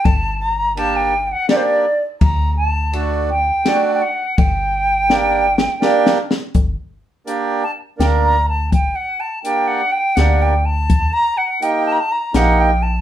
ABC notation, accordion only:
X:1
M:3/4
L:1/8
Q:1/4=83
K:Gm
V:1 name="Accordion"
z2 [B,DG] z [B,DG] z | z2 [A,D^F] z [A,DF] z | z2 [B,DG] z [B,DG] z | z2 [B,DG] z [B,DB] z |
z2 [B,DG] z [B,DG] z | z2 [B,EG] z [B,EG] z |]